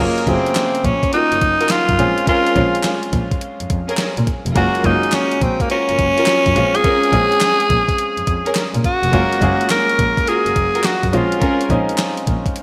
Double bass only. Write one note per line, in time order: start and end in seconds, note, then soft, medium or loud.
0.27 0.35 F#1 loud
0.85 0.93 A#1 medium
1.32 1.35 F#1 soft
1.42 1.50 F#1 medium
1.89 1.96 F#2 medium
1.99 2.07 A#1 medium
2.56 2.64 A#1 loud
3.13 3.21 A#1 medium
3.61 3.64 F2 soft
3.70 3.78 F2 medium
4.18 4.25 A#2 medium
4.46 4.53 F1 medium
4.56 4.64 F#1 loud
4.84 4.92 F#1 loud
5.42 5.50 A#1 medium
5.89 5.92 F#1 soft
5.99 6.07 F#1 medium
6.46 6.53 F#2 medium
6.56 6.64 A#1 loud
7.13 7.21 A#1 loud
7.70 7.78 A#1 medium
8.18 8.21 F2 soft
8.27 8.35 F2 medium
8.74 8.82 A#2 medium
9.03 9.10 F1 medium
9.13 9.21 F#1 loud
9.42 9.50 F#1 loud
9.99 10.07 A#1 medium
10.46 10.49 F#1 soft
10.56 10.64 F#1 medium
11.03 11.10 F#2 medium
11.13 11.21 A#1 medium
11.70 11.78 A#1 loud
12.27 12.35 A#1 medium